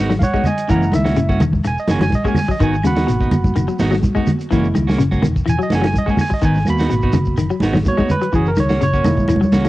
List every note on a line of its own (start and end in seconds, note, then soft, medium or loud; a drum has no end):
0.00 0.18 G#1 medium
0.00 0.12 D#3 medium
0.00 0.12 B3 medium
0.00 0.12 D#4 medium
0.00 0.12 F#4 medium
0.10 0.29 F#3 medium
0.10 snare medium
0.10 claves medium
0.10 shekere soft
0.19 0.44 C#5 medium
0.19 0.22 F5 medium
0.19 kick medium
0.19 snare soft
0.19 closed hi-hat medium
0.19 high conga medium
0.19 shekere medium
0.24 0.46 F#5 medium
0.33 0.53 G#3 medium
0.33 0.48 B3 soft
0.33 0.48 D#4 medium
0.33 0.47 F#4 medium
0.33 kick medium
0.33 shekere soft
0.44 0.68 D#5 medium
0.44 0.69 G#5 loud
0.44 closed hi-hat medium
0.44 high conga medium
0.44 low conga medium
0.44 claves medium
0.44 shekere medium
0.58 closed hi-hat medium
0.58 shekere soft
0.68 0.89 F#1 medium
0.68 0.83 E3 medium
0.68 0.88 E3 medium
0.68 1.37 G#3 medium
0.68 1.37 A#3 medium
0.68 0.84 A#3 medium
0.68 0.84 C#4 medium
0.68 1.37 E4 medium
0.68 0.92 F#5 medium
0.68 0.93 A#5 loud
0.68 muted clean electric guitar stroke medium
0.68 kick medium
0.68 closed hi-hat medium
0.68 shekere medium
0.83 shekere soft
0.92 1.14 C#2 medium
0.92 1.12 D#3 medium
0.92 1.40 E5 medium
0.92 snare soft
0.92 closed hi-hat medium
0.92 high conga medium
0.92 claves medium
0.92 shekere medium
1.04 1.19 A#3 soft
1.04 1.19 C#4 soft
1.04 1.19 F#4 medium
1.04 snare medium
1.04 shekere soft
1.16 1.37 F#1 medium
1.16 1.36 C#3 medium
1.16 closed hi-hat medium
1.16 shekere medium
1.29 1.43 A#3 soft
1.29 1.43 C#4 soft
1.29 1.43 F#4 medium
1.29 kick medium
1.29 high conga medium
1.29 shekere soft
1.40 1.61 E1 medium
1.40 1.60 D#3 medium
1.40 closed hi-hat medium
1.40 high conga medium
1.40 low conga medium
1.40 claves medium
1.40 shekere medium
1.53 kick medium
1.53 high conga medium
1.53 shekere soft
1.64 1.75 E1 medium
1.64 1.78 G#5 loud
1.64 muted clean electric guitar stroke medium
1.64 snare soft
1.64 closed hi-hat medium
1.64 claves medium
1.64 shekere medium
1.78 1.89 D#5 medium
1.78 shekere soft
1.88 2.09 F#1 medium
1.88 2.03 E3 medium
1.88 2.03 A#3 medium
1.88 2.03 C#4 medium
1.88 2.03 F#4 medium
1.88 2.01 G#5 medium
1.88 snare medium
1.88 closed hi-hat medium
1.88 high conga medium
1.88 shekere medium
1.99 2.20 F#3 medium
1.99 2.13 G#5 medium
1.99 snare medium
1.99 closed hi-hat medium
1.99 low conga medium
1.99 claves medium
1.99 shekere soft
2.10 kick medium
2.10 snare soft
2.10 closed hi-hat medium
2.10 high conga medium
2.10 shekere medium
2.15 2.25 D#5 medium
2.24 2.44 G#3 medium
2.24 2.39 A#3 soft
2.24 2.39 C#4 soft
2.24 2.38 F#4 medium
2.24 2.37 G#5 medium
2.24 kick medium
2.24 shekere soft
2.35 open hi-hat medium
2.35 high conga medium
2.35 low conga medium
2.35 claves medium
2.35 shekere medium
2.39 2.49 G#5 medium
2.48 2.58 F#3 medium
2.48 2.61 D#5 medium
2.48 kick medium
2.48 shekere soft
2.60 2.80 G#1 medium
2.60 2.75 D#3 medium
2.60 2.80 D#3 medium
2.60 2.75 B3 medium
2.60 2.75 D#4 medium
2.60 2.75 F#4 medium
2.60 2.85 G#5 medium
2.60 kick medium
2.60 closed hi-hat medium
2.60 shekere medium
2.74 shekere soft
2.83 3.05 D#2 medium
2.83 3.04 C#3 medium
2.83 4.48 A#3 medium
2.83 4.48 B3 soft
2.83 4.48 F#4 medium
2.83 3.77 F#5 medium
2.83 3.78 B5 medium
2.83 snare soft
2.83 closed hi-hat medium
2.83 high conga medium
2.83 claves medium
2.83 shekere medium
2.96 3.11 B3 soft
2.96 3.11 D#4 medium
2.96 3.10 F#4 medium
2.96 snare medium
2.96 closed hi-hat medium
2.96 shekere soft
3.07 3.28 G#1 medium
3.07 3.27 B2 medium
3.07 snare soft
3.07 closed hi-hat medium
3.07 shekere medium
3.21 3.35 B3 soft
3.21 3.35 D#4 soft
3.21 kick medium
3.21 shekere soft
3.31 3.52 F#1 medium
3.31 closed hi-hat medium
3.31 high conga loud
3.31 low conga medium
3.31 claves medium
3.31 shekere medium
3.44 kick medium
3.44 high conga medium
3.44 shekere soft
3.56 3.66 F#1 medium
3.56 3.66 D#3 medium
3.56 closed hi-hat medium
3.56 claves medium
3.56 shekere medium
3.68 3.87 F#3 medium
3.68 shekere soft
3.79 4.00 G#1 medium
3.79 3.94 D#3 medium
3.79 3.94 B3 medium
3.79 3.95 D#4 medium
3.79 3.95 F#4 medium
3.79 snare medium
3.79 closed hi-hat medium
3.79 high conga medium
3.79 shekere medium
3.91 4.11 F#3 medium
3.91 snare medium
3.91 claves medium
3.91 shekere soft
4.03 kick medium
4.03 closed hi-hat medium
4.03 high conga medium
4.03 shekere medium
4.15 4.35 G#3 medium
4.15 4.31 B3 soft
4.15 4.30 D#4 medium
4.15 4.30 F#4 medium
4.15 kick medium
4.15 high conga medium
4.15 shekere soft
4.27 closed hi-hat medium
4.27 low conga medium
4.27 claves medium
4.27 shekere medium
4.39 closed hi-hat medium
4.39 shekere soft
4.51 4.72 F#1 medium
4.51 4.70 E3 medium
4.51 4.66 E3 medium
4.51 4.83 G#3 medium
4.51 4.84 A#3 soft
4.51 4.66 A#3 medium
4.51 4.67 C#4 medium
4.51 4.84 E4 medium
4.51 4.67 F#4 medium
4.51 kick medium
4.51 snare soft
4.51 closed hi-hat medium
4.51 shekere medium
4.64 shekere soft
4.75 4.95 C#2 medium
4.75 4.94 D#3 medium
4.75 closed hi-hat medium
4.75 high conga medium
4.75 claves medium
4.75 shekere medium
4.87 5.02 A#3 medium
4.87 5.02 C#4 medium
4.87 5.02 F#4 medium
4.87 snare medium
4.87 shekere soft
4.98 5.19 F#1 loud
4.98 5.18 C#3 medium
4.98 closed hi-hat medium
4.98 shekere medium
5.11 5.26 A#3 medium
5.11 5.26 C#4 medium
5.11 5.25 F#4 medium
5.11 kick medium
5.11 high conga medium
5.11 shekere soft
5.22 5.43 E1 medium
5.22 5.42 D#3 medium
5.22 closed hi-hat medium
5.22 high conga medium
5.22 low conga medium
5.22 claves medium
5.22 shekere medium
5.36 kick medium
5.36 shekere soft
5.46 5.57 E1 medium
5.46 5.56 E3 medium
5.46 5.60 G#5 loud
5.46 closed hi-hat medium
5.46 claves medium
5.46 shekere loud
5.59 5.78 F#3 medium
5.59 shekere soft
5.63 5.72 D#5 medium
5.70 5.91 F#1 medium
5.70 5.86 E3 medium
5.70 5.86 A#3 medium
5.70 5.86 C#4 medium
5.70 5.86 F#4 medium
5.70 snare medium
5.70 closed hi-hat medium
5.70 high conga medium
5.70 shekere medium
5.75 5.85 G#5 medium
5.81 6.01 F#3 medium
5.81 snare medium
5.81 closed hi-hat medium
5.81 claves medium
5.81 shekere soft
5.87 5.96 G#5 medium
5.94 kick medium
5.94 closed hi-hat medium
5.94 high conga medium
5.94 shekere medium
5.98 6.08 D#5 loud
6.06 6.26 G#3 medium
6.06 6.22 A#3 soft
6.06 6.21 C#4 soft
6.06 6.21 F#4 medium
6.06 kick medium
6.06 shekere soft
6.10 6.20 G#5 medium
6.17 snare soft
6.17 open hi-hat medium
6.17 high conga medium
6.17 low conga medium
6.17 claves medium
6.17 shekere medium
6.21 6.32 G#5 loud
6.30 6.43 D#5 medium
6.30 muted clean electric guitar stroke medium
6.30 kick medium
6.30 shekere soft
6.42 6.63 G#1 loud
6.42 6.61 D#3 medium
6.42 6.57 D#3 medium
6.42 6.57 B3 medium
6.42 6.58 D#4 medium
6.42 6.67 G#5 loud
6.42 muted clean electric guitar stroke medium
6.42 kick loud
6.42 closed hi-hat medium
6.42 shekere medium
6.54 snare soft
6.54 shekere soft
6.65 6.87 D#2 medium
6.65 7.35 A#3 medium
6.65 7.35 B3 medium
6.65 7.36 F#4 medium
6.65 closed hi-hat medium
6.65 high conga medium
6.65 claves medium
6.65 shekere medium
6.70 7.61 B5 loud
6.78 6.94 B3 soft
6.78 6.93 D#4 medium
6.78 6.93 F#4 medium
6.78 snare medium
6.78 closed hi-hat medium
6.78 shekere soft
6.90 7.10 G#1 loud
6.90 7.09 B2 medium
6.90 closed hi-hat medium
6.90 shekere medium
7.01 7.17 B3 soft
7.01 7.17 D#4 medium
7.01 7.17 F#4 medium
7.01 kick medium
7.01 shekere soft
7.13 7.34 F#1 medium
7.13 7.33 C#3 medium
7.13 closed hi-hat medium
7.13 high conga loud
7.13 low conga medium
7.13 claves medium
7.13 shekere medium
7.25 kick medium
7.25 shekere soft
7.37 7.49 F#1 loud
7.37 7.48 D#3 medium
7.37 closed hi-hat medium
7.37 claves medium
7.37 shekere loud
7.50 7.69 F#3 medium
7.50 shekere soft
7.60 7.82 G#1 medium
7.60 7.77 D#3 medium
7.60 7.77 B3 medium
7.60 7.77 D#4 medium
7.60 7.77 F#4 medium
7.60 snare medium
7.60 closed hi-hat medium
7.60 high conga medium
7.60 shekere medium
7.73 7.93 F#3 medium
7.73 snare medium
7.73 low conga medium
7.73 claves medium
7.73 shekere soft
7.85 8.07 A#3 soft
7.85 8.08 B3 soft
7.85 8.08 F#4 medium
7.85 8.10 C#5 loud
7.85 kick medium
7.85 closed hi-hat medium
7.85 high conga medium
7.85 shekere medium
7.97 8.17 G#3 medium
7.97 8.13 B3 soft
7.97 8.13 D#4 medium
7.97 8.12 F#4 medium
7.97 kick medium
7.97 high conga medium
7.97 shekere soft
8.09 8.34 B4 loud
8.09 closed hi-hat medium
8.09 high conga medium
8.09 low conga medium
8.09 claves medium
8.09 shekere medium
8.21 8.31 F#3 medium
8.21 closed hi-hat soft
8.21 shekere soft
8.33 8.54 F#1 loud
8.33 8.52 E3 medium
8.33 8.49 E3 medium
8.33 8.49 C#4 medium
8.33 8.49 F#4 medium
8.33 8.46 G#4 loud
8.33 muted clean electric guitar stroke medium
8.33 kick medium
8.33 closed hi-hat medium
8.33 shekere medium
8.45 8.58 A#4 medium
8.45 shekere soft
8.56 8.78 C#2 medium
8.56 8.76 D#3 medium
8.56 snare soft
8.56 closed hi-hat medium
8.56 high conga medium
8.56 claves medium
8.56 shekere medium
8.60 8.82 C#5 medium
8.69 8.84 A#3 medium
8.69 8.84 C#4 soft
8.69 8.84 F#4 medium
8.69 snare medium
8.69 shekere soft
8.81 9.01 F#1 loud
8.81 9.00 C#3 medium
8.81 9.69 C#5 loud
8.81 snare soft
8.81 closed hi-hat medium
8.81 shekere medium
8.93 9.08 A#3 soft
8.93 9.08 C#4 medium
8.93 9.08 F#4 medium
8.93 kick medium
8.93 shekere soft
9.05 9.25 E1 medium
9.05 9.24 D#3 medium
9.05 9.37 G#3 medium
9.05 9.37 A#3 medium
9.05 9.38 E4 medium
9.05 snare soft
9.05 closed hi-hat medium
9.05 high conga medium
9.05 low conga medium
9.05 claves medium
9.05 shekere medium
9.17 kick medium
9.17 high conga medium
9.17 shekere soft
9.28 9.40 E1 medium
9.28 9.39 E3 medium
9.28 closed hi-hat medium
9.28 high conga medium
9.28 claves medium
9.28 shekere medium
9.36 high conga loud
9.41 9.60 F#3 medium
9.41 high conga loud
9.41 shekere soft
9.52 9.69 C#2 medium
9.52 9.67 E3 medium
9.52 9.67 A#3 medium
9.52 9.68 C#4 medium
9.52 9.68 F#4 medium
9.52 snare medium
9.52 closed hi-hat medium
9.52 high conga medium
9.52 shekere medium
9.65 9.69 F#3 medium
9.65 snare medium
9.65 closed hi-hat medium
9.65 claves medium
9.65 shekere soft